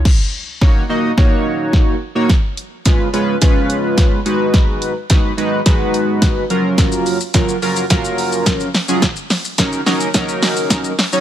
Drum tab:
CC |x---------------|----------------|----------------|----------------|
HH |----------------|x-x-x-x-x-x-x-x-|x-x-x-x-x-x-x-x-|x-o-x-o-x-o-x-o-|
SH |----------------|----------------|----------------|xxxxxxxxxxxxxxxx|
SD |o---o---o---o---|o---o---o---o---|o---o---o---o---|o---o---o---o-o-|
BD |o---o---o---o---|o---o---o---o---|o---o---o---o---|o---o---o---o---|

CC |----------------|
HH |x-o-x-o-x-o-x-o-|
SH |xxxxxxxxxxxxxxxx|
SD |o-o-o-o-o-o-o-o-|
BD |o---o---o---o---|